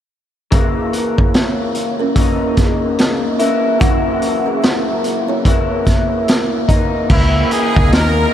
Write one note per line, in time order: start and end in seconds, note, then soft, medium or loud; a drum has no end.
0.51 2.15 C#3 medium
0.51 2.17 E3 medium
0.51 2.17 A#3 medium
0.51 0.91 G#4 medium
0.51 0.91 E5 medium
0.51 kick loud
0.51 closed hi-hat medium
0.93 closed hi-hat medium
1.18 1.34 E4 soft
1.18 1.34 C#5 medium
1.18 kick medium
1.34 1.58 E4 soft
1.34 1.58 C#5 medium
1.34 snare loud
1.34 closed hi-hat medium
1.75 closed hi-hat medium
1.99 2.16 C#4 medium
1.99 2.15 A#4 medium
2.16 3.40 C#3 medium
2.16 3.41 E3 medium
2.16 3.40 A#3 medium
2.16 3.39 D#4 medium
2.16 kick medium
2.16 closed hi-hat medium
2.57 2.97 B3 soft
2.57 2.97 G#4 medium
2.57 kick medium
2.57 snare soft
2.57 closed hi-hat medium
2.99 snare medium
2.99 closed hi-hat medium
3.39 3.80 E3 soft
3.39 3.81 A#3 soft
3.39 3.63 C#4 soft
3.39 3.81 E4 medium
3.39 3.63 A#4 medium
3.39 closed hi-hat medium
3.79 5.45 F#2 medium
3.79 5.44 C#3 medium
3.79 5.45 E3 medium
3.79 5.46 A#3 medium
3.79 5.47 E4 medium
3.79 4.20 A#4 medium
3.79 4.20 F#5 medium
3.79 kick loud
3.79 closed hi-hat medium
4.22 closed hi-hat medium
4.46 4.62 G#4 medium
4.46 4.61 E5 medium
4.63 4.87 A#4 medium
4.63 4.86 E5 medium
4.63 snare loud
4.63 closed hi-hat medium
5.04 closed hi-hat medium
5.28 5.45 E4 medium
5.28 5.44 C#5 medium
5.45 6.69 C#3 medium
5.45 6.70 E3 medium
5.45 6.69 A#3 medium
5.45 6.68 E4 medium
5.45 kick medium
5.45 closed hi-hat medium
5.85 6.49 E4 medium
5.85 6.48 C#5 medium
5.85 kick medium
5.85 snare soft
5.85 closed hi-hat medium
6.28 snare medium
6.28 closed hi-hat medium
6.68 7.09 E3 soft
6.68 7.10 A#3 soft
6.68 7.10 D#4 soft
6.68 kick medium
6.68 closed hi-hat medium
7.10 7.43 C#2 medium
7.10 7.76 C#3 medium
7.10 7.76 E3 medium
7.10 7.75 A#3 medium
7.10 7.49 E4 medium
7.10 kick loud
7.10 crash medium
7.51 7.94 G#4 medium
7.51 closed hi-hat medium
7.75 7.89 C#2 medium
7.75 8.33 A#3 medium
7.75 8.33 D#4 soft
7.75 kick medium
7.92 8.25 D#2 medium
7.92 8.34 A#4 loud
7.92 snare loud
7.92 closed hi-hat medium